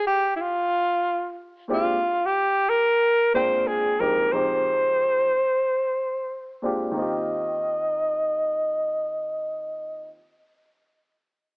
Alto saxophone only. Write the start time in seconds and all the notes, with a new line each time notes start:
0.07 G4
0.36 E4
0.42 F4
1.72 F4
2.26 G4
2.69 A#4
3.35 C5
3.67 G#4
4.00 A#4
4.32 C5
6.98 D#5